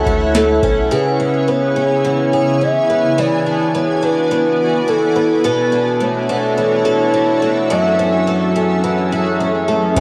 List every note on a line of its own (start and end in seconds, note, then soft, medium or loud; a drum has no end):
0.00 1.02 E3 medium
0.00 0.34 A3 medium
0.00 0.89 E4 medium
0.00 0.91 F#4 medium
0.00 0.89 C#5 medium
0.00 0.89 E5 medium
0.00 0.89 F#5 medium
0.06 0.60 D2 medium
0.06 0.63 C#4 medium
0.06 kick medium
0.35 0.97 A3 medium
0.35 0.88 A4 medium
0.35 snare loud
0.35 closed hi-hat medium
0.63 0.90 B1 medium
0.63 1.19 C#4 medium
0.63 kick loud
0.91 3.17 C#3 medium
0.91 3.15 C#3 medium
0.91 3.16 B3 medium
0.91 3.16 E4 medium
0.91 2.33 G#4 medium
0.91 1.52 B4 medium
0.91 3.15 C#5 medium
0.91 5.40 G#5 medium
1.20 1.75 C#4 soft
1.48 2.89 B3 soft
1.48 2.05 C#5 loud
1.76 2.60 C#4 medium
2.05 3.18 E3 medium
2.05 2.65 C#5 loud
2.33 3.18 G#4 soft
2.61 3.23 C#4 soft
2.61 3.21 E5 medium
2.90 3.74 B3 soft
3.17 5.42 E3 medium
3.17 5.75 E3 medium
3.17 7.66 B3 medium
3.17 5.42 F#4 medium
3.17 4.59 G#4 medium
3.17 5.42 D5 medium
3.17 3.77 D5 medium
3.46 4.02 D4 soft
3.75 4.31 B3 medium
3.75 4.05 C#5 medium
4.03 4.87 D4 medium
4.03 4.90 B4 medium
4.31 5.15 B3 medium
4.88 5.72 D4 soft
4.88 5.44 A4 medium
5.16 6.00 B3 soft
5.44 7.70 B2 medium
5.44 7.69 D4 medium
5.44 7.69 F#4 medium
5.44 9.93 A4 medium
5.44 6.85 A4 medium
5.44 6.04 B4 medium
5.44 7.68 C#5 medium
5.44 10.00 E5 medium
5.72 6.28 D4 soft
6.00 7.42 A3 medium
6.00 6.58 C#5 medium
6.29 7.12 D4 medium
6.58 8.83 E3 medium
6.58 7.73 C#5 loud
6.85 7.70 A4 medium
7.14 7.76 D4 soft
7.42 8.27 A3 medium
7.70 9.97 F#2 medium
7.70 9.95 F#3 medium
7.70 10.00 C#4 medium
7.70 9.11 F#4 medium
7.70 10.00 G#4 medium
7.70 8.56 E5 medium
7.99 8.55 C#4 medium
8.27 9.67 A3 medium
8.56 9.40 C#4 medium
8.84 10.00 E3 medium
9.12 9.97 F#4 medium
9.40 10.00 C#4 soft
9.68 10.00 A3 medium
9.96 10.00 C#2 loud
9.96 10.00 C#3 medium
9.96 kick medium
9.96 closed hi-hat medium